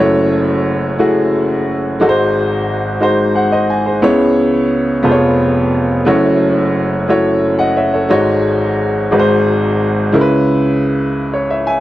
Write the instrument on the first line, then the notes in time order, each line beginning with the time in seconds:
upright piano
Already playing: F#1 F#2 A3 E4
0.00 F#4 C#5
0.99 A3 E4 F#4 G#4
2.00 G#1 G#2 G#3 D#4 F#4 A4
2.09 C5
3.00 G#3 D#4 F#4 C5
3.35 G#4 C5 F#5
3.52 C5 D#5
3.70 G#5
3.86 G#4 C5
4.02 C#2 C#3 B3 E4 G#4 C#5
5.03 F1 F2 B3 F4 G#4 C5
5.12 C#5
6.05 F#1 F#2 A3 E4 F#4 C#5
7.08 A3 E4 F#4 C#5
7.59 D#5 F#5
7.77 C#5 E5
7.94 A4 C#5
8.09 G#1 G#2 G#3 D#4 F#4 C#5
9.11 G#1 G#2 G#3 D#4 F#4 B4
9.19 C5
10.12 C#2 C#3 G#3 C#4 E4 A#4
10.21 B4
11.34 C#5
11.50 C#5 E5
11.67 E5 G#5